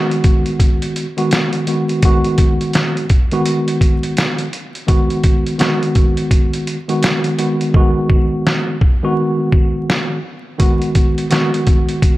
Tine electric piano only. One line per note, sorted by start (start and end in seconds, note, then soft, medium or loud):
0.00 1.05 D#3 medium
0.00 1.05 G#3 medium
0.00 1.05 B3 medium
0.00 1.06 F#4 loud
1.17 1.63 D#3 medium
1.17 1.63 G#3 medium
1.17 1.64 B3 medium
1.17 1.64 F#4 loud
1.67 2.00 D#3 medium
1.67 2.01 G#3 medium
1.67 2.01 B3 medium
1.67 2.01 F#4 medium
2.03 3.04 D#3 medium
2.03 3.04 G#3 medium
2.03 3.04 B3 medium
2.03 3.05 F#4 loud
3.32 4.45 D#3 medium
3.32 4.45 G#3 medium
3.32 4.46 B3 medium
3.32 4.46 F#4 loud
4.87 5.55 D#3 medium
4.87 5.55 G#3 medium
4.87 5.55 B3 medium
4.87 5.55 F#4 loud
5.59 6.76 D#3 medium
5.59 6.76 G#3 medium
5.59 6.77 B3 medium
5.59 6.77 F#4 loud
6.88 7.35 D#3 medium
6.88 7.35 G#3 medium
6.88 7.35 B3 medium
6.88 7.35 F#4 loud
7.38 7.72 D#3 medium
7.38 7.72 G#3 medium
7.38 7.72 B3 medium
7.38 7.73 F#4 medium
7.75 8.75 D#3 medium
7.75 8.75 G#3 medium
7.75 8.76 B3 medium
7.75 8.76 F#4 loud
9.03 10.16 D#3 medium
9.03 10.17 G#3 medium
9.03 10.17 B3 medium
9.03 10.17 F#4 loud
10.58 11.26 D#3 medium
10.58 11.26 G#3 medium
10.58 11.27 B3 medium
10.58 11.27 F#4 loud
11.30 12.18 D#3 medium
11.30 12.18 G#3 medium
11.30 12.18 B3 medium
11.30 12.18 F#4 loud